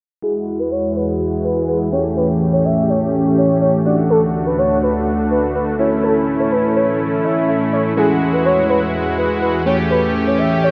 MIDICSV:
0, 0, Header, 1, 4, 480
1, 0, Start_track
1, 0, Tempo, 483871
1, 225, Time_signature, 4, 2, 24, 8
1, 10624, End_track
2, 0, Start_track
2, 0, Title_t, "Analog synth lead"
2, 0, Program_c, 0, 81
2, 227, Note_on_c, 0, 68, 97
2, 325, Note_off_c, 0, 68, 0
2, 587, Note_on_c, 0, 71, 80
2, 685, Note_off_c, 0, 71, 0
2, 708, Note_on_c, 0, 73, 87
2, 906, Note_off_c, 0, 73, 0
2, 949, Note_on_c, 0, 71, 76
2, 1047, Note_off_c, 0, 71, 0
2, 1428, Note_on_c, 0, 71, 69
2, 1626, Note_off_c, 0, 71, 0
2, 1667, Note_on_c, 0, 71, 72
2, 1766, Note_off_c, 0, 71, 0
2, 1907, Note_on_c, 0, 73, 74
2, 2006, Note_off_c, 0, 73, 0
2, 2150, Note_on_c, 0, 71, 96
2, 2247, Note_off_c, 0, 71, 0
2, 2507, Note_on_c, 0, 73, 79
2, 2606, Note_off_c, 0, 73, 0
2, 2629, Note_on_c, 0, 76, 78
2, 2826, Note_off_c, 0, 76, 0
2, 2869, Note_on_c, 0, 73, 79
2, 2967, Note_off_c, 0, 73, 0
2, 3349, Note_on_c, 0, 73, 79
2, 3546, Note_off_c, 0, 73, 0
2, 3585, Note_on_c, 0, 73, 75
2, 3684, Note_off_c, 0, 73, 0
2, 3826, Note_on_c, 0, 74, 77
2, 3925, Note_off_c, 0, 74, 0
2, 4065, Note_on_c, 0, 69, 100
2, 4165, Note_off_c, 0, 69, 0
2, 4425, Note_on_c, 0, 71, 78
2, 4524, Note_off_c, 0, 71, 0
2, 4547, Note_on_c, 0, 73, 89
2, 4745, Note_off_c, 0, 73, 0
2, 4787, Note_on_c, 0, 71, 74
2, 4886, Note_off_c, 0, 71, 0
2, 5267, Note_on_c, 0, 71, 71
2, 5465, Note_off_c, 0, 71, 0
2, 5506, Note_on_c, 0, 71, 75
2, 5605, Note_off_c, 0, 71, 0
2, 5744, Note_on_c, 0, 73, 75
2, 5844, Note_off_c, 0, 73, 0
2, 5985, Note_on_c, 0, 69, 92
2, 6084, Note_off_c, 0, 69, 0
2, 6345, Note_on_c, 0, 73, 80
2, 6444, Note_off_c, 0, 73, 0
2, 6464, Note_on_c, 0, 71, 78
2, 6664, Note_off_c, 0, 71, 0
2, 6704, Note_on_c, 0, 73, 75
2, 6804, Note_off_c, 0, 73, 0
2, 7187, Note_on_c, 0, 76, 79
2, 7385, Note_off_c, 0, 76, 0
2, 7425, Note_on_c, 0, 76, 77
2, 7524, Note_off_c, 0, 76, 0
2, 7663, Note_on_c, 0, 73, 78
2, 7763, Note_off_c, 0, 73, 0
2, 7905, Note_on_c, 0, 68, 98
2, 8004, Note_off_c, 0, 68, 0
2, 8261, Note_on_c, 0, 71, 80
2, 8362, Note_off_c, 0, 71, 0
2, 8385, Note_on_c, 0, 73, 87
2, 8584, Note_off_c, 0, 73, 0
2, 8622, Note_on_c, 0, 71, 78
2, 8723, Note_off_c, 0, 71, 0
2, 9104, Note_on_c, 0, 71, 71
2, 9304, Note_off_c, 0, 71, 0
2, 9343, Note_on_c, 0, 71, 75
2, 9443, Note_off_c, 0, 71, 0
2, 9581, Note_on_c, 0, 73, 77
2, 9682, Note_off_c, 0, 73, 0
2, 9824, Note_on_c, 0, 71, 94
2, 9924, Note_off_c, 0, 71, 0
2, 10185, Note_on_c, 0, 73, 82
2, 10285, Note_off_c, 0, 73, 0
2, 10304, Note_on_c, 0, 76, 79
2, 10503, Note_off_c, 0, 76, 0
2, 10546, Note_on_c, 0, 73, 79
2, 10624, Note_off_c, 0, 73, 0
2, 10624, End_track
3, 0, Start_track
3, 0, Title_t, "Analog polysynth"
3, 0, Program_c, 1, 90
3, 223, Note_on_c, 1, 56, 65
3, 228, Note_on_c, 1, 64, 61
3, 233, Note_on_c, 1, 66, 75
3, 1870, Note_off_c, 1, 56, 0
3, 1873, Note_off_c, 1, 64, 0
3, 1875, Note_off_c, 1, 66, 0
3, 1900, Note_on_c, 1, 57, 66
3, 1906, Note_on_c, 1, 61, 61
3, 1910, Note_on_c, 1, 67, 74
3, 3784, Note_off_c, 1, 57, 0
3, 3787, Note_off_c, 1, 61, 0
3, 3789, Note_off_c, 1, 67, 0
3, 3821, Note_on_c, 1, 57, 65
3, 3827, Note_on_c, 1, 62, 60
3, 3831, Note_on_c, 1, 66, 75
3, 5704, Note_off_c, 1, 57, 0
3, 5707, Note_off_c, 1, 62, 0
3, 5710, Note_off_c, 1, 66, 0
3, 5740, Note_on_c, 1, 57, 66
3, 5745, Note_on_c, 1, 61, 62
3, 5749, Note_on_c, 1, 64, 73
3, 7862, Note_off_c, 1, 57, 0
3, 7865, Note_off_c, 1, 61, 0
3, 7867, Note_off_c, 1, 64, 0
3, 7903, Note_on_c, 1, 56, 66
3, 7907, Note_on_c, 1, 64, 63
3, 7911, Note_on_c, 1, 66, 77
3, 9550, Note_off_c, 1, 56, 0
3, 9552, Note_off_c, 1, 64, 0
3, 9554, Note_off_c, 1, 66, 0
3, 9581, Note_on_c, 1, 57, 70
3, 9586, Note_on_c, 1, 61, 59
3, 9590, Note_on_c, 1, 67, 76
3, 10624, Note_off_c, 1, 57, 0
3, 10624, Note_off_c, 1, 61, 0
3, 10624, Note_off_c, 1, 67, 0
3, 10624, End_track
4, 0, Start_track
4, 0, Title_t, "Ambient pad"
4, 0, Program_c, 2, 92
4, 221, Note_on_c, 2, 40, 77
4, 221, Note_on_c, 2, 52, 69
4, 221, Note_on_c, 2, 66, 70
4, 224, Note_on_c, 2, 68, 88
4, 1886, Note_off_c, 2, 40, 0
4, 1886, Note_off_c, 2, 66, 0
4, 1887, Note_off_c, 2, 68, 0
4, 1906, Note_on_c, 2, 45, 79
4, 1906, Note_on_c, 2, 61, 71
4, 1906, Note_on_c, 2, 67, 86
4, 3787, Note_off_c, 2, 52, 0
4, 3806, Note_off_c, 2, 45, 0
4, 3806, Note_off_c, 2, 61, 0
4, 3806, Note_off_c, 2, 67, 0
4, 3828, Note_on_c, 2, 38, 80
4, 3828, Note_on_c, 2, 66, 71
4, 3828, Note_on_c, 2, 69, 91
4, 3829, Note_on_c, 2, 50, 70
4, 5727, Note_off_c, 2, 38, 0
4, 5727, Note_off_c, 2, 66, 0
4, 5728, Note_off_c, 2, 50, 0
4, 5745, Note_on_c, 2, 61, 72
4, 5746, Note_on_c, 2, 45, 78
4, 5747, Note_on_c, 2, 52, 73
4, 7867, Note_off_c, 2, 69, 0
4, 7883, Note_off_c, 2, 61, 0
4, 7884, Note_off_c, 2, 45, 0
4, 7899, Note_on_c, 2, 66, 72
4, 7900, Note_on_c, 2, 40, 80
4, 7900, Note_on_c, 2, 68, 82
4, 9565, Note_off_c, 2, 66, 0
4, 9566, Note_off_c, 2, 40, 0
4, 9566, Note_off_c, 2, 68, 0
4, 9585, Note_on_c, 2, 45, 82
4, 9585, Note_on_c, 2, 61, 72
4, 9586, Note_on_c, 2, 67, 89
4, 10624, Note_off_c, 2, 45, 0
4, 10624, Note_off_c, 2, 52, 0
4, 10624, Note_off_c, 2, 61, 0
4, 10624, Note_off_c, 2, 67, 0
4, 10624, End_track
0, 0, End_of_file